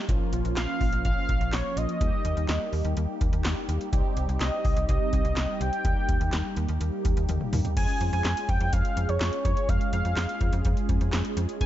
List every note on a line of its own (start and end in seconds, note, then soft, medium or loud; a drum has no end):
0.09 0.19 A#1 loud
0.09 1.97 F3 medium
0.09 1.97 A#3 medium
0.09 1.97 C#4 medium
0.09 1.97 F4 medium
0.09 kick loud
0.09 closed hi-hat medium
0.33 0.43 A#1 medium
0.33 closed hi-hat medium
0.45 0.55 A#1 medium
0.45 closed hi-hat medium
0.57 0.67 A#1 loud
0.57 1.02 F5 loud
0.57 snare loud
0.57 clap medium
0.57 closed hi-hat medium
0.81 0.91 A#1 loud
0.81 kick medium
0.81 open hi-hat soft
0.93 1.03 A#1 loud
0.93 closed hi-hat medium
1.05 1.15 A#1 loud
1.05 1.55 F5 loud
1.05 kick medium
1.05 closed hi-hat medium
1.29 1.39 A#1 loud
1.29 kick medium
1.29 closed hi-hat medium
1.41 1.51 A#1 loud
1.41 closed hi-hat soft
1.53 1.63 A#1 loud
1.53 1.79 C#5 loud
1.53 snare loud
1.53 clap medium
1.53 closed hi-hat medium
1.77 1.87 A#1 loud
1.77 3.21 D#5 loud
1.77 closed hi-hat medium
1.89 closed hi-hat medium
2.01 2.11 D#2 loud
2.01 3.89 G3 medium
2.01 3.89 A#3 medium
2.01 3.89 D#4 medium
2.01 3.89 G4 medium
2.01 kick loud
2.01 closed hi-hat medium
2.25 2.35 D#2 loud
2.25 closed hi-hat medium
2.37 2.47 D#2 medium
2.37 closed hi-hat soft
2.49 2.59 D#2 loud
2.49 snare loud
2.49 clap medium
2.49 closed hi-hat medium
2.73 2.83 D#2 medium
2.73 open hi-hat soft
2.85 2.95 D#2 loud
2.85 closed hi-hat medium
2.97 3.07 D#2 loud
2.97 closed hi-hat medium
3.21 3.31 D#2 loud
3.21 kick medium
3.21 closed hi-hat medium
3.33 3.43 D#2 loud
3.33 closed hi-hat medium
3.45 3.55 D#2 loud
3.45 snare loud
3.45 clap medium
3.45 closed hi-hat medium
3.69 3.79 D#2 loud
3.69 closed hi-hat medium
3.81 closed hi-hat medium
3.93 4.03 C2 loud
3.93 5.81 G3 medium
3.93 5.81 C4 medium
3.93 5.81 D#4 medium
3.93 5.81 G4 medium
3.93 kick loud
3.93 closed hi-hat medium
4.17 4.27 C2 medium
4.17 closed hi-hat medium
4.29 4.39 C2 loud
4.29 closed hi-hat medium
4.41 4.51 C2 loud
4.41 4.85 D#5 medium
4.41 snare loud
4.41 clap medium
4.41 closed hi-hat medium
4.65 4.75 C2 loud
4.65 kick medium
4.65 open hi-hat soft
4.77 4.87 C2 loud
4.77 closed hi-hat medium
4.89 4.99 C2 loud
4.89 5.62 D#5 loud
4.89 kick loud
4.89 closed hi-hat medium
5.13 5.23 C2 loud
5.13 kick medium
5.13 closed hi-hat medium
5.25 5.35 C2 loud
5.25 closed hi-hat medium
5.37 5.47 C2 loud
5.37 snare loud
5.37 clap medium
5.37 closed hi-hat medium
5.61 5.71 C2 loud
5.61 6.57 G5 loud
5.61 closed hi-hat medium
5.73 closed hi-hat medium
5.85 5.95 D#2 loud
5.85 7.73 G3 medium
5.85 7.73 A#3 medium
5.85 7.73 D#4 medium
5.85 7.73 G4 medium
5.85 kick loud
5.85 closed hi-hat medium
6.09 6.19 D#2 medium
6.09 kick loud
6.09 closed hi-hat medium
6.21 6.31 D#2 loud
6.21 closed hi-hat medium
6.33 6.43 D#2 loud
6.33 snare loud
6.33 clap medium
6.33 closed hi-hat medium
6.57 6.67 D#2 loud
6.57 closed hi-hat medium
6.68 6.79 D#2 loud
6.68 closed hi-hat medium
6.81 6.91 D#2 loud
6.81 closed hi-hat medium
7.05 7.15 D#2 loud
7.05 kick medium
7.05 closed hi-hat medium
7.17 7.27 D#2 loud
7.17 closed hi-hat medium
7.29 7.39 D#2 loud
7.29 closed hi-hat medium
7.29 high tom medium
7.41 mid tom medium
7.53 7.63 D#2 loud
7.53 mid tom loud
7.53 open hi-hat medium
7.65 closed hi-hat medium
7.65 floor tom loud
7.77 7.87 F2 loud
7.77 11.57 G#3 medium
7.77 11.57 C#4 medium
7.77 11.57 F4 medium
7.77 11.57 G#4 medium
7.77 8.10 G#5 loud
7.77 kick loud
7.77 closed hi-hat medium
7.77 crash loud
7.89 closed hi-hat medium
8.01 8.11 F2 loud
8.01 closed hi-hat medium
8.13 8.23 F2 loud
8.13 8.51 G#5 loud
8.13 closed hi-hat medium
8.25 8.35 F2 loud
8.25 snare loud
8.25 clap medium
8.25 closed hi-hat medium
8.37 closed hi-hat medium
8.49 8.59 F2 loud
8.49 8.74 G5 loud
8.49 kick medium
8.49 closed hi-hat medium
8.61 8.71 F2 loud
8.61 closed hi-hat medium
8.73 8.83 F2 loud
8.73 9.11 F5 loud
8.73 kick loud
8.73 closed hi-hat medium
8.85 closed hi-hat medium
8.97 9.07 F2 medium
8.97 closed hi-hat medium
9.09 9.19 F2 loud
9.09 9.44 C#5 loud
9.09 closed hi-hat medium
9.21 9.31 F2 loud
9.21 snare loud
9.21 clap loud
9.21 closed hi-hat medium
9.33 closed hi-hat medium
9.45 9.55 F2 loud
9.45 9.70 C#5 medium
9.45 kick loud
9.45 closed hi-hat medium
9.57 closed hi-hat medium
9.69 9.79 F2 loud
9.69 9.92 F5 loud
9.69 kick loud
9.69 closed hi-hat medium
9.81 closed hi-hat medium
9.93 10.03 F2 loud
9.93 10.85 F5 loud
9.93 closed hi-hat medium
10.05 10.15 F2 medium
10.05 closed hi-hat medium
10.17 10.27 F2 loud
10.17 snare loud
10.17 clap medium
10.17 closed hi-hat medium
10.29 closed hi-hat medium
10.41 10.51 F2 loud
10.41 kick medium
10.41 closed hi-hat medium
10.53 10.63 F2 loud
10.53 closed hi-hat medium
10.65 10.75 F2 loud
10.65 kick loud
10.65 closed hi-hat medium
10.77 closed hi-hat medium
10.89 10.99 F2 loud
10.89 kick loud
10.89 closed hi-hat medium
11.01 11.11 F2 medium
11.01 closed hi-hat medium
11.13 11.23 F2 loud
11.13 snare loud
11.13 clap medium
11.13 closed hi-hat medium
11.25 closed hi-hat medium
11.37 11.47 F2 loud
11.37 closed hi-hat medium
11.49 closed hi-hat medium
11.61 11.66 F2 loud
11.61 11.66 G#3 medium
11.61 11.66 C4 medium
11.61 11.66 D#4 medium
11.61 11.66 G#4 medium
11.61 11.66 G#5 loud
11.61 kick loud
11.61 closed hi-hat medium